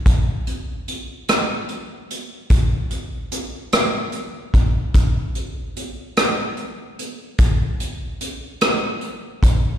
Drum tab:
HH |xxxxxx|xxxxxx|xxxxxx|xxxxxx|
SD |---r--|---r--|---r--|---r--|
BD |o-----|o----o|o-----|o----o|